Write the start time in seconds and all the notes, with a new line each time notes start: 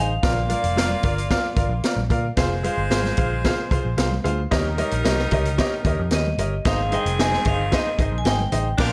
Already playing: A1 D#4 G#4 C5 D#5
0.00 F5
0.23 A#1 A#2 A#3 F4 A#4 D5 F5, kick, snare, closed hi-hat
0.37 muted conga
0.49 F4 A#4 D5 F5, closed hi-hat, high conga
0.64 F1, closed hi-hat
0.76 F4 A#4 D5 F5, snare, closed hi-hat, muted conga, high conga
0.89 high conga
1.03 G1 F4 A#4 D5 F5, kick, closed hi-hat, low conga
1.18 closed hi-hat
1.30 F4 A#4 D5 F5, kick, snare, closed hi-hat, muted conga
1.56 G#1 F4 A#4 D5 F5, kick, closed hi-hat
1.69 A#1
1.83 F4 A#4 D5 F5, snare, closed hi-hat, muted conga
1.96 A#1, muted conga, high conga
2.10 A#2 F4 A#4 D5 F5, kick, closed hi-hat, low conga
2.35 F1 G#3 F4 G#4 C5 F5, kick, snare, closed hi-hat
2.63 F4 G#4 C5 F5, closed hi-hat, high conga
2.78 G1
2.90 G#1 F4 G#4 C5 F5, snare, closed hi-hat, muted conga, high conga
3.04 snare, high conga
3.17 A#1 F4 G#4 C5 F5, kick, closed hi-hat, low conga
3.44 F4 G#4 C5 F5, kick, snare, closed hi-hat
3.71 C2 F4 G#4 C5 F5, kick, closed hi-hat
3.85 A#1
3.97 C2 F4 G#4 C5 F5, snare, closed hi-hat, muted conga
4.12 muted conga, high conga
4.24 D2 F4 G#4 C5 F5, closed hi-hat, low conga
4.51 D#2 D#3 G3 D#4 G4 A#4 C#5 D#5, kick, snare, closed hi-hat
4.65 muted conga
4.78 G4 A#4 C#5 D#5, closed hi-hat, high conga
4.91 A#1, closed hi-hat
5.04 C2 G4 A#4 C#5 D#5, snare, closed hi-hat, muted conga, high conga
5.17 snare, muted conga, high conga
5.31 C#2 G4 A#4 C#5 D#5, kick, closed hi-hat, low conga
5.45 closed hi-hat
5.58 G4 A#4 C#5 D#5, kick, snare, closed hi-hat
5.85 D#2 G4 A#4 C#5 D#5, kick, closed hi-hat
6.00 F2
6.11 D#2 G4 A#4 C#5 D#5, snare, closed hi-hat, muted conga
6.26 muted conga, high conga
6.38 G1 G4 A#4 C#5 D#5, closed hi-hat, low conga
6.64 G#1 G#2 D#3 C4 D#4 G#4 C5 D#5 F5, kick, snare, closed hi-hat
6.92 D#4 G#4 C5 D#5 G5, closed hi-hat, high conga
7.06 F1, closed hi-hat
7.18 D#4 G#4 C5 D#5 G#5, snare, closed hi-hat, high conga
7.32 snare, muted conga, high conga
7.45 G1 D#4 G#4 C5 D#5 F5, kick, closed hi-hat, low conga
7.72 D#4 G#4 C5 D#5, kick, snare, closed hi-hat, muted conga
7.86 muted conga
7.98 G#1 D#4 G#4 C5 D#5, kick, closed hi-hat
8.12 A#1
8.18 G#5
8.25 G#1 D#4 G#4 C5 D#5 G5, snare, closed hi-hat, muted conga
8.39 muted conga, high conga
8.52 A1 D#4 G#4 C5 D#5, closed hi-hat, low conga
8.78 A#1 A#2 F3 D4 F4 A#4 D5 F5, kick, snare, crash